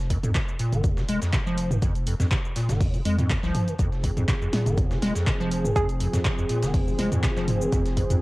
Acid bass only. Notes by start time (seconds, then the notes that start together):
0.10 F2
0.23 F2
0.35 C3
0.59 A#2
0.73 D#3
0.84 D#2
0.97 D#3
1.09 G#3
1.22 F2
1.33 C3
1.46 F3
1.71 D#3
1.82 F2
2.07 F2
2.20 F2
2.32 C3
2.56 A#2
2.69 D#3
2.81 D#2
2.94 D#3
3.05 G#3
3.19 F2
3.30 C3
3.43 F3
3.68 D#3
3.79 F2
4.04 F2
4.17 F2
4.28 C3
4.41 F2
4.53 A#2
4.66 D#3
4.77 D#2
4.91 D#3
5.02 G#3
5.15 F2
5.27 C3
5.40 F3
5.64 D#3
5.76 F2
6.00 F2
6.13 F2
6.25 C3
6.38 F2
6.50 A#2
6.63 D#3
6.74 D#2
6.87 D#3
6.99 G#3
7.12 F2
7.23 C3
7.36 F3
7.61 D#3
7.73 F2
7.97 F2
8.10 F2